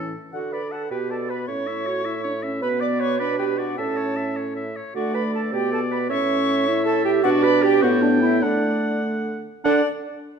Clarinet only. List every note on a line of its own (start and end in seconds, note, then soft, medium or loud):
0.00 0.14 C#4 medium
0.33 0.51 F#4 medium
0.53 0.61 B4 medium
0.73 0.81 A4 medium
0.91 1.10 G4 medium
1.10 1.29 A4 medium
1.30 1.38 B4 medium
1.48 2.41 C#5 medium
2.62 2.80 B4 medium
2.81 3.02 D5 medium
3.00 3.19 C#5 loud
3.20 3.38 B4 loud
3.39 3.60 G4 medium
3.58 3.77 F#4 medium
3.78 4.36 A4 medium
4.96 5.14 F#4 medium
5.14 5.23 B4 medium
5.33 5.52 A4 medium
5.53 5.71 G4 medium
5.72 5.80 A4 medium
5.91 6.09 B4 medium
6.09 6.84 C#5 loud
6.86 7.04 A4 loud
7.05 7.25 G4 loud
7.23 7.44 F#4 loud
7.43 7.64 B4 loud
7.62 7.83 G4 loud
7.82 8.04 F#4 loud
8.02 8.22 D4 loud
8.22 8.44 E4 loud
8.42 9.03 D4 medium
9.64 9.82 D4 loud